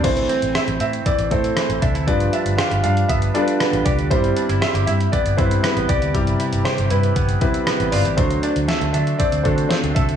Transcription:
<<
  \new Staff \with { instrumentName = "Grand piano" } { \time 4/4 \key c \major \tempo 4 = 118 c''4 e''8 e''8 d''8 c''8 c''8 e''8 | d''8 e''8 f''8 f''8 e''8 d''8 b'8 d''8 | c''4 e''8 e''8 d''8 c''8 b'8 d''8~ | d''4 c''8 b'4. b'8 d''8 |
c''8 d''8 e''8 e''8 d''8 c''8 c''8 e''8 | }
  \new Staff \with { instrumentName = "Grand piano" } { \time 4/4 \key c \major <a c' e' c''>4. r4 <a c' e' a'>4 r8 | <g d' f' b'>4. r4 <g d' f' a' b'>4 r8 | <g c' e' b''>4. r4 <g c' e' b'>4 r8 | <c g e' g'>4. r4 <g c' e' b'>4 r8 |
<a d' fis' c''>4. r4 <a d' fis' a'>4 r8 | }
  \new Staff \with { instrumentName = "Clean electric guitar" } { \time 4/4 \key c \major e8 c'8 e'8 c'8 e8 c'8 e8 d'16 e'16 | f8 d'8 g'8 d'8 b8 d'8 b8 g'8 | g8 d'16 e'16 f'16 g'16 e'8 b8 e'8 b8 g'8 | g8 e'8 g'8 e'8 b8 e'8 b8 f'16 g'16 |
fis8 d'8 a'8 d'8 c'8 d'8 c'8 a'8 | }
  \new Staff \with { instrumentName = "Fingered electric bass" } { \clef bass \time 4/4 \key c \major a,,8 r16 a,,16 r16 a,,16 a,8 r16 a,,16 a,8 r16 a,,16 c,16 d,16 | g,,8 r16 g,,16 r16 g,,16 g,8 g,,8 r8. a,,16 c,16 d,16 | g,,8 r16 g,,16 r16 g,,16 g,8 r16 g,,16 g,8 r16 a,,16 c,16 d,16 | g,,8 r16 g,,16 r16 g,,16 g,8 g,,8 r8. a,,16 g,,16 a,,16 |
d,8 r16 d,16 r16 d,16 d8 r16 d,16 d8 r16 d,16 c,16 d,16 | }
  \new DrumStaff \with { instrumentName = "Drums" } \drummode { \time 4/4 <cymc hh bd>16 hh16 hh16 hh16 <hh ss>16 hh16 hh16 hh16 <hh bd>16 hh16 <hh bd>16 hh16 <hh ss>16 hh16 <hh bd>16 hh16 | <hh bd>16 hh16 hh16 hh16 <hh ss>16 hh16 hh16 hh16 <hh bd>16 hh16 hh16 hh16 <hh ss>16 hh16 <hh bd>16 hh16 | <hh bd>16 hh16 hh16 hh16 <hh ss>16 hh16 hh16 hh16 <hh bd>16 hh16 <hh bd>16 hh16 <hh ss>16 hh16 <hh bd>16 hh16 | <hh bd>16 hh16 hh16 hh16 <hh ss>16 hh16 hh16 hh16 <hh bd>16 hh16 <hh bd>16 hh16 <hh ss>16 hh16 hho16 hh16 |
<hh bd>16 hh16 hh16 hh16 <hh sn>16 hh16 hh16 hh16 <hh bd>16 hh16 <hh bd>16 hh16 <hh sn>16 hh16 <hh bd>16 hh16 | }
>>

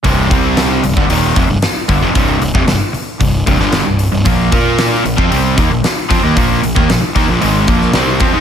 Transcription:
<<
  \new Staff \with { instrumentName = "Overdriven electric guitar" } { \clef bass \time 4/4 \key c \minor \tempo 4 = 114 <c, g, c>8 <c g c'>4 <c, g,>16 <g, d>16 <ees, bes, ees>8 <f, c>16 <c, g,>16 r8 <g, d>16 <f, c>16 | <c, g, c>8 <c, g,>16 <f, c>16 <c, g,>16 r8. <c, g,>8 <c, g,>16 <g, d g>8 <c, g,>8 <c, g,>16 | <bes, f bes>8 <bes f' bes'>4 <bes, f>16 <f c'>16 <c g c'>8 <ees bes>16 <bes, f>16 r8 <f c'>16 <ees bes>16 | <bes, f bes>8 <bes, f>16 <ees bes>16 <bes, f>16 r16 <ees bes>16 <bes, f>16 <aes, ees aes>8 <bes, f bes>8 <c g c'>8 <f c'>16 <aes ees'>16 | }
  \new Staff \with { instrumentName = "Overdriven electric guitar" } { \clef bass \time 4/4 \key c \minor <c, g, c>8 <c g c'>4 <c, g,>16 <g, d>16 <ees, bes, ees>8 <f, c>16 <c, g,>16 r8 <g, d>16 <f, c>16 | <c, g, c>8 <c, g,>16 <f, c>16 <c, g,>16 r8. <c, g,>8 <c, g,>16 <g, d g>8 <c, g,>8 <c, g,>16 | <bes, f bes>8 <bes f' bes'>4 <bes, f>16 <f c'>16 <c g c'>8 <ees bes>16 <bes, f>16 r8 <f c'>16 <ees bes>16 | <bes, f bes>8 <bes, f>16 <ees bes>16 <bes, f>16 r16 <ees bes>16 <bes, f>16 <aes, ees aes>8 <bes, f bes>8 <c g c'>8 <f c'>16 <aes ees'>16 | }
  \new Staff \with { instrumentName = "Fingered electric bass" } { \clef bass \time 4/4 \key c \minor c,,8 c,4 c,,16 g,,16 ees,,8 f,,16 c,,16 r8 g,,16 f,,16 | c,,8 c,,16 f,,16 c,,16 r8. c,,8 c,,16 g,,8 c,,8 c,,16 | bes,,8 bes,4 bes,,16 f,16 c,8 ees,16 bes,,16 r8 f,16 ees,16 | bes,,8 bes,,16 ees,16 bes,,16 r16 ees,16 bes,,16 aes,,8 bes,,8 c,8 f,16 aes,16 | }
  \new DrumStaff \with { instrumentName = "Drums" } \drummode { \time 4/4 <hho bd>8 <hho bd>8 <hho sn>8 hho16 bd16 hho8 <hho bd>8 <hho sn>8 <hho bd>8 | <hho bd>8 hho16 bd16 <hho sn>8 hho8 <hho bd>8 <hho bd>16 sn16 <hho sn>8 hho8 | <hho bd>8 <hho bd>8 <hho sn>8 hho16 bd16 hho8 <hho bd>8 <hho sn>8 <hho bd>8 | <hho bd>8 hho16 bd16 <hho sn>8 <hho bd>8 hho8 <hho bd>16 sn16 <hho sn>8 <hho bd>8 | }
>>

